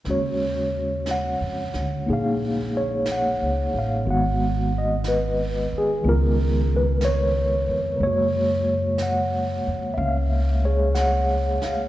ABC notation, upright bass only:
X:1
M:4/4
L:1/8
Q:"Swing" 1/4=61
K:Ebm
V:1 name="Upright bass" clef=bass
E,,2- (3E,, F,, =D,, B,,,2- (3B,,, _D,, =A,,, | A,,,3 z D,,3 F,, | G,,3 F,, D,,3 z |]